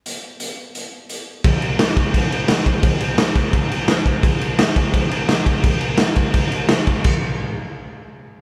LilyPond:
\new DrumStaff \with { instrumentName = "Drums" } \drummode { \time 4/4 \tempo 4 = 171 hh4 hh4 hh4 hh4 | <cymc bd>8 cymc8 <cymc sn>8 <cymc bd>8 <cymc bd>8 cymc8 <cymc sn>8 <cymc bd>8 | <cymc bd>8 cymc8 <cymc sn>8 <cymc bd sn>8 <cymc bd>8 cymc8 <cymc sn>8 <cymc bd>8 | <cymc bd>8 cymc8 <cymc sn>8 <cymc bd>8 <cymc bd>8 cymc8 <cymc sn>8 <cymc bd>8 |
<cymc bd>8 cymc8 <cymc sn>8 <cymc bd>8 <cymc bd>8 cymc8 <cymc sn>8 <cymc bd>8 | <cymc bd>4 r4 r4 r4 | }